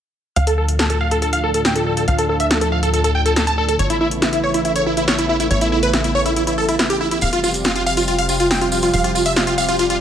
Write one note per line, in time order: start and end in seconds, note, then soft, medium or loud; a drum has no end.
0.36 2.06 D2 medium
0.36 3.76 A2 medium
0.36 3.76 D3 medium
0.36 3.76 F3 medium
0.36 3.76 D4 medium
0.36 3.76 F4 medium
0.36 0.43 F5 medium
0.36 0.43 F5 loud
0.36 closed hi-hat medium
0.47 0.54 A4 medium
0.47 closed hi-hat medium
0.58 0.64 A4 medium
0.68 closed hi-hat medium
0.79 0.86 A4 medium
0.79 snare loud
0.79 closed hi-hat medium
0.90 0.97 A4 medium
0.90 closed hi-hat medium
1.01 1.07 F5 medium
1.11 1.18 A4 medium
1.11 closed hi-hat medium
1.22 1.29 A4 medium
1.22 closed hi-hat medium
1.33 1.39 F5 medium
1.33 closed hi-hat medium
1.43 1.50 A4 medium
1.54 1.61 A4 medium
1.54 closed hi-hat medium
1.65 1.71 G5 medium
1.65 1.72 G5 medium
1.65 snare loud
1.65 closed hi-hat medium
1.76 1.82 A4 medium
1.76 closed hi-hat medium
1.86 1.93 A4 medium
1.97 2.04 A4 medium
1.97 closed hi-hat medium
2.08 3.77 D2 medium
2.08 2.14 F5 medium
2.08 closed hi-hat medium
2.18 2.25 A4 medium
2.18 closed hi-hat medium
2.29 2.36 A4 medium
2.40 2.46 E5 medium
2.40 2.47 E5 medium
2.40 closed hi-hat medium
2.51 2.57 A4 medium
2.51 snare loud
2.51 closed hi-hat medium
2.61 2.68 A4 medium
2.61 closed hi-hat medium
2.72 2.79 F5 medium
2.83 2.89 A4 medium
2.83 closed hi-hat medium
2.94 3.00 A4 medium
2.94 closed hi-hat medium
3.04 3.11 A4 medium
3.04 closed hi-hat medium
3.15 3.22 G5 medium
3.26 3.32 A4 medium
3.26 closed hi-hat medium
3.36 3.43 A4 medium
3.36 snare loud
3.36 closed hi-hat medium
3.47 3.54 A5 medium
3.47 closed hi-hat medium
3.58 3.64 A4 medium
3.69 3.75 A4 medium
3.69 closed hi-hat medium
3.79 5.49 A1 medium
3.79 7.19 C#3 medium
3.79 7.19 E3 medium
3.79 7.19 A3 medium
3.79 7.19 B3 medium
3.79 7.19 E4 medium
3.79 3.86 C#5 medium
3.79 closed hi-hat medium
3.90 3.97 E4 medium
3.90 closed hi-hat medium
4.01 4.07 E4 medium
4.11 closed hi-hat medium
4.22 4.29 E4 medium
4.22 snare loud
4.22 closed hi-hat medium
4.33 4.39 E4 medium
4.33 closed hi-hat medium
4.44 4.50 C#5 medium
4.54 4.61 E4 medium
4.54 closed hi-hat medium
4.65 4.72 E4 medium
4.65 closed hi-hat medium
4.76 4.82 C#5 medium
4.76 closed hi-hat medium
4.86 4.93 E4 medium
4.97 5.04 E4 medium
4.97 closed hi-hat medium
5.08 5.14 C#5 medium
5.08 snare loud
5.08 closed hi-hat medium
5.18 5.25 E4 medium
5.18 closed hi-hat medium
5.29 5.36 E4 medium
5.40 5.47 E4 medium
5.40 closed hi-hat medium
5.51 7.20 A1 medium
5.51 5.57 C#5 medium
5.51 closed hi-hat medium
5.61 5.68 E4 medium
5.61 closed hi-hat medium
5.72 5.79 E4 medium
5.83 5.89 B4 medium
5.83 closed hi-hat medium
5.93 6.00 E4 medium
5.93 snare loud
5.93 closed hi-hat medium
6.04 6.11 E4 medium
6.04 closed hi-hat medium
6.15 6.22 C#5 medium
6.15 6.22 C#5 loud
6.26 6.32 E4 medium
6.26 closed hi-hat medium
6.36 6.43 E4 medium
6.36 closed hi-hat medium
6.47 6.54 E4 medium
6.47 closed hi-hat medium
6.58 6.64 A4 medium
6.69 6.75 E4 medium
6.69 closed hi-hat medium
6.79 6.86 E4 medium
6.79 snare loud
6.79 closed hi-hat medium
6.90 6.96 G4 medium
6.90 closed hi-hat medium
7.01 7.07 E4 medium
7.11 7.18 E4 medium
7.11 closed hi-hat medium
7.21 8.91 F1 medium
7.21 10.01 C3 medium
7.21 10.01 F3 medium
7.21 10.01 G3 medium
7.21 10.01 F4 medium
7.21 10.01 G4 medium
7.21 7.29 F5 medium
7.21 closed hi-hat medium
7.21 tambourine soft
7.33 7.39 F4 medium
7.33 closed hi-hat medium
7.44 7.50 F4 medium
7.44 tambourine medium
7.54 closed hi-hat medium
7.54 tambourine soft
7.64 7.72 F4 medium
7.64 snare loud
7.64 closed hi-hat medium
7.64 tambourine soft
7.76 7.82 F4 medium
7.76 closed hi-hat medium
7.86 7.93 F5 medium
7.86 tambourine medium
7.97 8.04 F4 medium
7.97 closed hi-hat medium
7.97 tambourine medium
8.08 8.14 F4 medium
8.08 closed hi-hat medium
8.08 tambourine soft
8.19 8.25 F5 medium
8.19 closed hi-hat medium
8.29 8.36 F4 medium
8.29 tambourine medium
8.40 8.46 F4 medium
8.40 8.47 F4 medium
8.40 closed hi-hat medium
8.40 tambourine soft
8.51 8.57 G5 medium
8.51 8.57 G5 loud
8.51 snare loud
8.51 closed hi-hat medium
8.51 tambourine soft
8.61 8.68 F4 medium
8.61 closed hi-hat medium
8.72 8.79 F4 medium
8.72 tambourine medium
8.82 8.89 F4 medium
8.82 closed hi-hat medium
8.82 tambourine soft
8.93 10.01 F1 medium
8.93 9.00 F5 medium
8.93 closed hi-hat medium
8.93 tambourine soft
9.04 9.11 F4 medium
9.04 closed hi-hat medium
9.15 9.22 F4 medium
9.15 tambourine medium
9.26 9.32 E5 medium
9.26 closed hi-hat medium
9.26 tambourine soft
9.36 9.43 F4 medium
9.36 snare loud
9.36 closed hi-hat medium
9.36 tambourine soft
9.47 9.54 F4 medium
9.47 closed hi-hat medium
9.58 9.64 F5 medium
9.58 9.64 F5 loud
9.58 tambourine medium
9.68 9.75 F4 medium
9.68 closed hi-hat medium
9.68 tambourine soft
9.79 9.86 F4 medium
9.79 closed hi-hat medium
9.79 tambourine soft
9.90 9.97 F4 medium
9.90 closed hi-hat medium